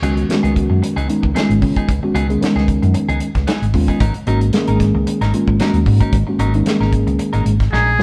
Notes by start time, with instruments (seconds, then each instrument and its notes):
0.02 fingered electric bass C#2, tine electric piano D#3 G#3 B3 C#4 F#4, clean electric guitar F#3 B3 D#4 G#4, closed hi-hat
0.16 muted clean electric guitar stroke, closed hi-hat
0.29 tine electric piano D#3 G#3 B3 C#4 F#4, muted fingered electric bass stroke, snare, closed hi-hat
0.43 fingered electric bass C#2, clean electric guitar B3 D#4 G#4, closed hi-hat
0.55 muted clean electric guitar stroke, kick, closed hi-hat
0.70 fingered electric bass F#2, muted clean electric guitar stroke
0.82 muted clean electric guitar stroke, muted fingered electric bass stroke, closed hi-hat
0.96 fingered electric bass C#2, clean electric guitar F#3 B3 D#4 G#4, closed hi-hat
1.09 tine electric piano D#3 G#3 B3 C#4 D#4, muted clean electric guitar stroke, closed hi-hat
1.23 fingered electric bass C#2, muted clean electric guitar stroke, kick
1.34 tine electric piano D#3 G#3 B3 C#4 F4, clean electric guitar F#3 B3 D#4 G#4, snare, closed hi-hat
1.49 fingered electric bass G#1, closed hi-hat
1.62 fingered electric bass C#3, muted clean electric guitar stroke, kick, open hi-hat
1.76 clean electric guitar B3 D#4 G#4, kick, closed hi-hat
1.89 fingered electric bass C#2, kick, closed hi-hat
2.02 tine electric piano D#3 G#3 B3 C#4 F#4, muted clean electric guitar stroke, muted fingered electric bass stroke
2.14 fingered electric bass C#2, clean electric guitar F#3 B3 D#4 G#4, closed hi-hat
2.29 tine electric piano D#3 G#3 B3 C#4 G#4, muted clean electric guitar stroke, closed hi-hat
2.41 tine electric piano D#3 G#3 B3 C#4 D#4, muted fingered electric bass stroke, snare, closed hi-hat
2.56 fingered electric bass C#2, clean electric guitar B3 D#4 G#4, snare
2.68 muted clean electric guitar stroke, kick, closed hi-hat
2.82 fingered electric bass F#2, muted clean electric guitar stroke, closed hi-hat
2.94 muted clean electric guitar stroke, muted fingered electric bass stroke, closed hi-hat
3.09 fingered electric bass C#2, clean electric guitar F#3 B3 D#4 G#4, closed hi-hat
3.20 muted clean electric guitar stroke, closed hi-hat
3.35 fingered electric bass C#2, muted clean electric guitar stroke, kick, snare, closed hi-hat
3.47 clean electric guitar F#3 B3 D#4 G#4, snare, closed hi-hat
3.62 fingered electric bass G#1, closed hi-hat
3.73 fingered electric bass D#2, tine electric piano D#3 G#3 B3 C#4 F4, muted clean electric guitar stroke, kick, open hi-hat
3.88 clean electric guitar B3 D#4 G#4, kick, closed hi-hat
4.00 fingered electric bass G#1, clean electric guitar F#3 C#4 D#4 A#4, kick, closed hi-hat
4.14 muted clean electric guitar stroke, closed hi-hat
4.27 fingered electric bass G#1, tine electric piano D#3 G#3 A#3 C#4 F#4, clean electric guitar F#3 C#4 D#4 A#4, closed hi-hat
4.41 closed hi-hat
4.53 tine electric piano D#3 G#3 A#3 C#4 G#4, snare, closed hi-hat
4.67 fingered electric bass G#1, clean electric guitar C#4 D#4 A#4, closed hi-hat
4.80 muted clean electric guitar stroke, kick, snare, closed hi-hat
4.94 fingered electric bass C#2, muted clean electric guitar stroke
5.07 muted clean electric guitar stroke, muted fingered electric bass stroke, closed hi-hat
5.21 fingered electric bass G#1, clean electric guitar F#3 C#4 D#4 A#4, snare, closed hi-hat
5.33 tine electric piano D#3 G#3 A#3 C#4 F4, muted clean electric guitar stroke, closed hi-hat
5.48 fingered electric bass G#1, muted clean electric guitar stroke, kick
5.60 tine electric piano D#3 G#3 A#3 C#4 F#4, clean electric guitar F#3 C#4 D#4 A#4, snare, closed hi-hat
5.74 fingered electric bass D#2, closed hi-hat
5.86 fingered electric bass G#2, muted clean electric guitar stroke, kick, open hi-hat
6.00 clean electric guitar C#4 D#4 A#4, kick, closed hi-hat
6.13 fingered electric bass G#1, kick, closed hi-hat
6.27 tine electric piano D#3 G#3 A#3 C#4 F#4, muted clean electric guitar stroke
6.39 fingered electric bass G#1, clean electric guitar F#3 C#4 D#4 A#4, closed hi-hat
6.54 tine electric piano D#3 G#3 A#3 C#4 D#4, muted clean electric guitar stroke, closed hi-hat
6.66 tine electric piano D#3 G#3 A#3 C#4 G#4, snare, closed hi-hat
6.80 fingered electric bass G#1, clean electric guitar C#4 D#4 A#4, snare
6.93 kick, closed hi-hat
7.07 fingered electric bass C#2, muted clean electric guitar stroke, closed hi-hat
7.19 muted clean electric guitar stroke, closed hi-hat
7.33 fingered electric bass G#1, clean electric guitar F#3 C#4 D#4 A#4, closed hi-hat
7.45 fingered electric bass G#1, muted clean electric guitar stroke, closed hi-hat
7.60 muted clean electric guitar stroke, kick, snare, closed hi-hat
7.72 fingered electric bass A#1, clean electric guitar F#3 C#4 D#4 A#4, muted trumpet G#4, snare
7.98 fingered electric bass C2, tine electric piano D#3 G#3 A#3 C#4 F#4, muted clean electric guitar stroke, snare